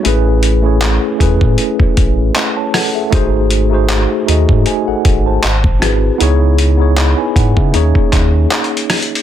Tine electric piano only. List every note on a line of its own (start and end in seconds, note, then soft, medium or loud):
0.03 0.43 A3 loud
0.03 0.44 C#4 loud
0.03 0.44 E4 loud
0.03 0.45 G#4 loud
0.07 0.46 B4 loud
0.62 1.02 A3 medium
0.62 1.03 C#4 medium
0.62 1.03 E4 medium
0.62 1.04 G#4 medium
0.66 1.04 C#5 medium
1.18 2.25 A3 loud
1.18 2.25 C#4 medium
1.18 2.26 E4 medium
1.18 2.27 G#4 medium
1.22 2.27 B4 loud
2.57 2.74 C#5 medium
2.57 2.73 A5 medium
2.74 2.94 A4 medium
2.74 2.94 F#5 medium
2.95 3.12 G#4 medium
2.95 3.32 E5 medium
3.10 3.51 A3 loud
3.10 3.51 D#4 loud
3.10 3.52 F#4 loud
3.10 3.53 G#4 loud
3.15 3.53 C5 loud
3.70 4.10 A3 loud
3.70 4.11 D#4 medium
3.70 4.11 F#4 medium
3.70 4.12 G#4 medium
3.74 4.12 C5 loud
4.26 5.33 A3 medium
4.26 5.33 D#4 medium
4.26 5.34 F#4 medium
4.26 4.67 G#4 medium
4.30 4.68 D#5 loud
4.67 4.87 C5 medium
4.67 4.86 G#5 medium
4.88 5.24 A4 medium
4.88 5.24 F#5 medium
5.26 5.63 C5 medium
5.26 5.63 A5 medium
5.80 6.08 C4 medium
5.80 6.09 E4 medium
5.80 6.09 F#4 medium
5.80 6.10 G#4 medium
5.84 6.10 B4 loud
6.18 6.59 B3 loud
6.18 6.59 D#4 loud
6.18 6.60 E4 loud
6.18 6.60 G#4 loud
6.23 6.61 C#5 loud
6.77 7.18 B3 medium
6.77 7.18 D#4 medium
6.77 7.19 E4 medium
6.77 6.98 G#4 medium
6.82 6.98 C#5 loud
6.97 7.17 D#5 medium
6.97 7.17 B5 medium
7.18 7.35 B4 medium
7.18 7.35 G#5 medium
7.36 7.55 F#5 medium
7.56 7.74 G#4 medium
7.56 7.93 E5 medium
7.72 8.97 A#3 loud
7.72 8.97 C#4 medium
7.72 8.98 D#4 loud
7.72 8.98 G#4 medium
7.76 8.99 C#5 loud